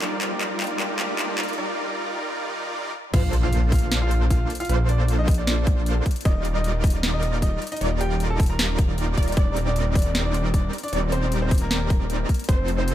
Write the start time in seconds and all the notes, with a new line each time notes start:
Already playing: riser
0.01 G3 A#3 D4 D#4 F4 G4 A#4 D5, clap, closed hi-hat
0.21 clap, closed hi-hat
0.31 A#3 D4 F4 G4
0.41 clap, closed hi-hat
0.59 A#3 D4 F4 G4, clap, closed hi-hat
0.64 closed hi-hat
0.67 closed hi-hat
0.79 A#3 D4 F4 G4, clap, closed hi-hat
0.98 A#3 D4 F4 G4, clap, closed hi-hat
1.19 clap, closed hi-hat
1.28 A#3 D4 F4 G4
1.38 G3 D#4 F4 A#4 D5, clap, closed hi-hat
1.43 closed hi-hat
1.48 closed hi-hat
1.53 closed hi-hat
1.58 G3 D#4 F4 A#4 D5
2.85 high tom
2.94 mid tom
3.04 mid tom
3.14 A#1 A#3 D4 F4 A4 C5 F5, kick, closed hi-hat, crash, impact
3.33 closed hi-hat
3.43 F4 F5
3.53 closed hi-hat
3.72 F4 F5, kick, closed hi-hat, open hi-hat
3.79 closed hi-hat
3.92 snare, closed hi-hat
4.02 F4 F5
4.11 closed hi-hat
4.30 F4 F5, kick, closed hi-hat
4.50 closed hi-hat
4.55 closed hi-hat
4.60 F4 F5, closed hi-hat
4.65 closed hi-hat
4.69 A#1 A#3 D4 F4 A4 C5, closed hi-hat
4.89 D4 D5, closed hi-hat
5.08 closed hi-hat
5.19 D#4 D#5
5.28 kick, closed hi-hat, open hi-hat
5.34 D4 D5, closed hi-hat
5.47 snare, closed hi-hat
5.67 kick, closed hi-hat
5.86 closed hi-hat
6.06 kick, closed hi-hat
6.11 closed hi-hat
6.16 closed hi-hat
6.21 closed hi-hat
6.25 D#1 G3 D#4 F4 A#4 D5 D#5, kick, closed hi-hat
6.45 closed hi-hat
6.55 D#4 D#5
6.64 closed hi-hat
6.84 D#4 D#5, kick, closed hi-hat, open hi-hat
6.90 closed hi-hat
7.03 snare, closed hi-hat
7.13 D#4 D#5
7.23 closed hi-hat
7.42 D#4 D#5, kick, closed hi-hat
7.62 closed hi-hat
7.67 closed hi-hat
7.72 D#4 D#5, closed hi-hat
7.77 closed hi-hat
7.81 D#1 G3 D#4 F4 A#4 D5, closed hi-hat
8.01 G4 G5, closed hi-hat
8.20 closed hi-hat
8.30 A4 A5
8.40 kick, closed hi-hat, open hi-hat
8.46 A#4 A#5, closed hi-hat
8.59 snare, closed hi-hat
8.79 kick, closed hi-hat
8.98 closed hi-hat
9.17 D#1 D#4 F4 A#4 D5, kick, closed hi-hat
9.23 closed hi-hat
9.28 closed hi-hat
9.32 closed hi-hat
9.37 D#1 G3 C4 D4 D#4 D5, kick, closed hi-hat
9.56 closed hi-hat
9.67 D4 D5
9.76 closed hi-hat
9.95 D4 D5, kick, closed hi-hat, open hi-hat
10.02 closed hi-hat
10.15 snare, closed hi-hat
10.25 D4 D5
10.34 closed hi-hat
10.54 D4 D5, kick, closed hi-hat
10.73 closed hi-hat
10.78 closed hi-hat
10.83 D4 D5, closed hi-hat
10.88 closed hi-hat
10.93 D#1 G3 C4 D#4 A#4 D5, closed hi-hat
11.12 C4 C5, closed hi-hat
11.32 closed hi-hat
11.42 C4 C5
11.51 kick, closed hi-hat, open hi-hat
11.58 A#3 A#4, closed hi-hat
11.71 snare, closed hi-hat
11.90 kick, closed hi-hat
12.10 closed hi-hat
12.29 kick, closed hi-hat
12.34 closed hi-hat
12.39 closed hi-hat
12.44 closed hi-hat
12.49 F1 F3 C4 D#4 A4 C5, kick, closed hi-hat
12.68 closed hi-hat
12.78 C4 C5
12.88 closed hi-hat